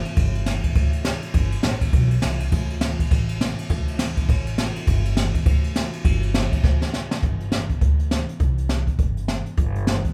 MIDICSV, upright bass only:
0, 0, Header, 1, 2, 480
1, 0, Start_track
1, 0, Key_signature, 1, "major"
1, 0, Tempo, 294118
1, 276, Time_signature, 4, 2, 24, 8
1, 16540, End_track
2, 0, Start_track
2, 0, Title_t, "Upright bass"
2, 0, Program_c, 0, 32
2, 277, Note_on_c, 0, 31, 97
2, 947, Note_off_c, 0, 31, 0
2, 1232, Note_on_c, 0, 38, 86
2, 1904, Note_off_c, 0, 38, 0
2, 2184, Note_on_c, 0, 31, 99
2, 2522, Note_off_c, 0, 31, 0
2, 2672, Note_on_c, 0, 33, 85
2, 3080, Note_off_c, 0, 33, 0
2, 3151, Note_on_c, 0, 35, 90
2, 3558, Note_off_c, 0, 35, 0
2, 3630, Note_on_c, 0, 36, 82
2, 4038, Note_off_c, 0, 36, 0
2, 4116, Note_on_c, 0, 38, 95
2, 4785, Note_off_c, 0, 38, 0
2, 5080, Note_on_c, 0, 33, 88
2, 5747, Note_off_c, 0, 33, 0
2, 6041, Note_on_c, 0, 38, 98
2, 6708, Note_off_c, 0, 38, 0
2, 7002, Note_on_c, 0, 33, 86
2, 7669, Note_off_c, 0, 33, 0
2, 7954, Note_on_c, 0, 31, 104
2, 8623, Note_off_c, 0, 31, 0
2, 8907, Note_on_c, 0, 38, 91
2, 9578, Note_off_c, 0, 38, 0
2, 9867, Note_on_c, 0, 31, 101
2, 10538, Note_off_c, 0, 31, 0
2, 10829, Note_on_c, 0, 38, 92
2, 11501, Note_off_c, 0, 38, 0
2, 11796, Note_on_c, 0, 31, 96
2, 12466, Note_off_c, 0, 31, 0
2, 12750, Note_on_c, 0, 38, 78
2, 13423, Note_off_c, 0, 38, 0
2, 13706, Note_on_c, 0, 36, 90
2, 14381, Note_off_c, 0, 36, 0
2, 14666, Note_on_c, 0, 31, 79
2, 15343, Note_off_c, 0, 31, 0
2, 15625, Note_on_c, 0, 31, 98
2, 16302, Note_off_c, 0, 31, 0
2, 16540, End_track
0, 0, End_of_file